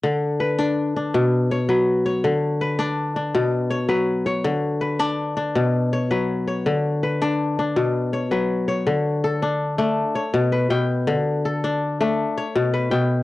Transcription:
<<
  \new Staff \with { instrumentName = "Kora" } { \time 12/8 \key b \minor \tempo 4. = 109 r4 b'8 d'4 d'4 r8 cis''8 b'4 cis''8~ | cis''8 r8 b'8 d'4 d'4 r8 cis''8 b'4 cis''8~ | cis''8 r8 b'8 d'4 d'4 r8 cis''8 b'4 cis''8~ | cis''8 r8 b'8 d'4 d'4 r8 cis''8 b'4 cis''8~ |
cis''8 r8 a'4. d'4 cis''4 b'8 g''4~ | g''8 r8 a'4. d'4 cis''4 b'8 g''4 | }
  \new Staff \with { instrumentName = "Kora" } { \clef bass \time 12/8 \key b \minor d4 r8 d'4 r8 b,4 r8 fis4 r8 | d4 r8 d'4 r8 b,4 r8 fis4 r8 | d4 r8 d'4 r8 b,4 r8 fis4 r8 | d4 r8 d'4 r8 b,4 r8 fis4 r8 |
d4 r8 d'4 a8 r4 b,4 b,4 | d4 r8 d'4 a8 r4 b,4 b,4 | }
>>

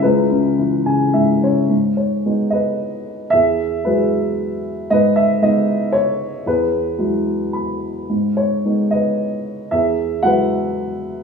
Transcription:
<<
  \new Staff \with { instrumentName = "Upright piano" } { \time 3/4 \key cis \minor \tempo 4 = 113 << { b'2~ b'8 r8 | \key gis \phrygian r8 cis''4 dis''4. | e''4 b'4. r8 | dis''8 e''8 dis''4 cis''4 |
b'2~ b'8 r8 | r8 cis''4 dis''4. | e''4 fis''4. r8 | } \\ { <e' gis'>2~ <e' gis'>8 r8 | r4. b'4. | gis'4 gis'4. r8 | b'4. r4. |
gis'2~ gis'8 r8 | r4. b'4. | gis'4 b'4. r8 | } >> }
  \new Staff \with { instrumentName = "Upright piano" } { \clef bass \time 3/4 \key cis \minor cis,8 cis8 e8 <cis gis''>8 <gis, e''>8 <cis cis''>8 | \key gis \phrygian gis,4 <gis b dis'>4 r4 | e,4 <fis gis e'>4 r4 | gis,4 <gis b dis'>4 r4 |
e,4 <fis gis e'>4 b''4 | gis,4 <gis b dis'>4 r4 | e,4 <fis gis e'>4 r4 | }
>>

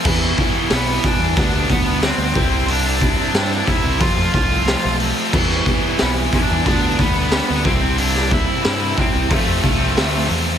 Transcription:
<<
  \new Staff \with { instrumentName = "Lead electric guitar" } { \time 4/4 \key c \major \tempo 4 = 91 r4 <b b'>8 <d' d''>4 <b b'>8 <c' c''>4 | <d' d''>4. <e' e''>8 <f' f''>8 <f' f''>4 r8 | r4 <b b'>8 <d' d''>4 <b b'>4 <c' c''>8 | <d' d''>8 <e' e''>4 <c' c''>8 <a a'>4. r8 | }
  \new Staff \with { instrumentName = "Distorted electric guitar" } { \time 4/4 \key c \major <e g b e'>8. <g b e'>16 <e g b e'>8 <e g b e'>8 <d g b d'>16 <g b d'>8 <g b d'>16 <d g b d'>8 <c g c' e'>16 <g c' e'>16 | <c g c' e'>8. <g c' e'>16 <c g c' e'>8 <c g c' e'>8 <f a c' f'>16 <a c' f'>8 <a c' f'>16 <f a c' f'>8 <f a c' f'>16 <a c' f'>16 | <e g b e'>8. <g b e'>16 <e g b e'>8 <e g b e'>8 <d g b d'>16 <g b d'>8 <g b d'>16 <d g b d'>8 <c g c' e'>16 <g c' e'>16 | <c g c' e'>8. <g c' e'>16 <c g c' e'>8 <c g c' e'>8 <f, c f a c'>16 <f a c'>8 <f a c'>16 <f, c f a c'>8 <c f a c'>16 <f a c'>16 | }
  \new Staff \with { instrumentName = "Overdriven electric guitar" } { \time 4/4 \key c \major <e g b e'>8 <e g b e'>16 <g b e'>16 <e g b e'>8 <e g b e'>16 <g b e'>16 <d g b d'>16 <g b d'>16 <d g b d'>8 <d g b d'>8 <c g c' e'>16 <g c' e'>16 | <c g c' e'>8 <c g c' e'>16 <g c' e'>16 <c g c' e'>8 <c g c' e'>16 <g c' e'>16 <f a c' f'>16 <a c' f'>16 <f a c' f'>8 <f a c' f'>8 <f a c' f'>16 <a c' f'>16 | <e g b e'>8 <e g b e'>16 <g b e'>16 <e g b e'>8 <e g b e'>16 <g b e'>16 <d g b d'>16 <g b d'>16 <d g b d'>8 <d g b d'>8 <c g c' e'>16 <g c' e'>16 | <c g c' e'>8 <c g c' e'>16 <g c' e'>16 <c g c' e'>8 <c g c' e'>16 <g c' e'>16 <f a c' f'>16 <a c' f'>16 <f a c' f'>8 <f a c' f'>8 <f a c' f'>16 <a c' f'>16 | }
  \new Staff \with { instrumentName = "Distorted electric guitar" } { \time 4/4 \key c \major <e g b e'>2 <d g b d'>4. <c g c' e'>8~ | <c g c' e'>2 <f a c' f'>2 | <e g b e'>2 <d g b d'>4. <c g c' e'>8~ | <c g c' e'>2 <f, c f a c' f'>2 | }
  \new Staff \with { instrumentName = "Picked electric bass" } { \clef bass \time 4/4 \key c \major e,8 r8 b,,8 r16 e,16 d,8 d,8. d,16 c,8~ | c,4 g,8 r16 c,16 f,8 c,8. b,,8 r16 | e,8 r8 b,,8 r16 e,16 d,8 d,8. d,16 c,8~ | c,4 g,8 r16 c,16 f,8 c,8 d,8 e,8 | }
  \new DrumStaff \with { instrumentName = "Drums" } \drummode { \time 4/4 <cymc bd>8 <hho bd>8 <hho sn>8 <hho bd>8 <hho bd>8 <hho bd>8 <hho sn>8 <hho bd>8 | hho8 <hho bd>8 <hho sn>8 <hho bd>8 <hho bd>8 <hho bd>8 <hho sn>8 hho8 | <cymc bd>16 sn16 <hho bd>8 <hho sn>8 <hho bd>8 <hho bd>8 <hho bd>8 <hho sn>8 <hho bd>8 | hho16 sn16 <hho bd>8 <hho sn>8 <hho bd>8 <hho bd>8 <hho bd>8 <hho sn>8 hho8 | }
>>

